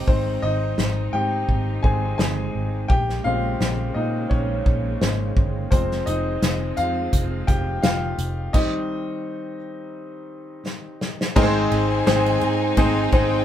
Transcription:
0.07 G#1 D#3 G#3 C4 D#4 C5, kick
0.42 G#1 D#4 D#5
0.78 G#1, snare
1.13 G#2 G4 G5
1.49 G#1, kick
1.82 G#1 D#3 G#3 C4 G#4 G#5, kick
2.18 G1 G#4 G#5, snare
2.55 G#1
2.88 A#1 C#3 A#3 G4 G5, kick
3.09 snare
3.24 A#1 C#3 G#3 C4 F4 F5
3.61 A#1, snare
3.94 A#2 D#4 D#5
4.29 A#1 C#4 C#5, kick
4.66 A#1, kick
5.01 G#1 C#3 G#3 C5, snare
5.37 G1, kick
5.71 F1 F3 G#3 C4 C5, kick, closed hi-hat
5.91 snare
6.06 F1 D#4 D#5, closed hi-hat
6.42 F1, snare, closed hi-hat
6.77 F2 F4 F5, closed hi-hat
7.13 F1, kick, closed hi-hat
7.47 F1 G4 G5, kick, closed hi-hat
7.82 F1 F4 F5, snare, closed hi-hat
8.18 F1, closed hi-hat
8.53 D#3 G3 C4 D#4 D#5, kick, crash
10.66 snare
11.01 snare
11.21 snare
11.36 G#1 G#2 D#3 G#3 C4 D#4 G#4 A#4 G#5, kick, crash
11.43 C5
11.71 G#1 G#3 C4 D#4 G#4, ride
12.07 G#1 G#2 D#3 G#3 C4 D#4 G#4 C5, snare, ride
12.26 ride
12.41 G#2 G#3 C4 D#4 G#4, ride
12.77 G#1 G#3 C4 D#4 G#4 C5, kick, ride
13.12 G#1 G#3 C4 D#4 G#4 C5 G5, kick, ride

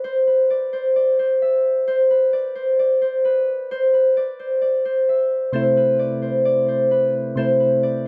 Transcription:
Already playing: B4 D5
0.04 C5
0.27 B4
0.50 D5
0.73 C5
0.96 D5
1.19 C5
1.42 E5
1.88 C5
2.10 B4
2.33 D5
2.55 C5
2.79 D5
3.02 C5
3.25 B4
3.71 C5
3.93 B4
4.17 D5
4.39 C5
4.61 D5
4.85 C5
5.09 E5
5.52 C3 A3 E4 C5
5.77 B4
5.99 D5
6.22 C5
6.45 D5
6.68 C5
6.91 B4
7.36 C3 A3 E4 C5
7.60 B4
7.83 D5

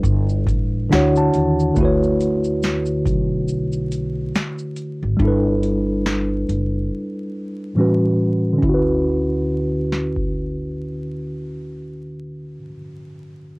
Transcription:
Already playing: G3 D4 E4 A4 B4
0.03 G1, kick, shaker
0.29 shaker
0.47 A1, kick, closed hi-hat, shaker
0.90 D2 D3 D4 E4 F#4 F#5, snare, shaker
0.95 C#5
1.16 A5, shaker
1.34 D#2, closed hi-hat, shaker
1.60 shaker
1.74 D2 D3 A3, kick, shaker
1.78 E4 F#4
1.83 B4 C#5
2.03 shaker
2.20 closed hi-hat, shaker
2.44 shaker
2.63 snare, shaker
2.86 shaker
3.06 B1, kick, closed hi-hat, shaker
3.48 shaker
3.73 shaker
3.92 closed hi-hat, shaker
4.35 snare, shaker
4.59 shaker
4.76 closed hi-hat, shaker
5.03 G#1
5.17 G1 G3 D4, kick
5.22 E4 A4
5.28 B4
5.63 closed hi-hat
6.06 snare
6.49 F#1, closed hi-hat
7.75 A2 E3 G3 C#4
7.80 F#4 B4
8.53 D3
8.58 C#4
8.63 D2 E4, kick
8.69 F#4
8.74 B4
9.92 snare
10.16 kick

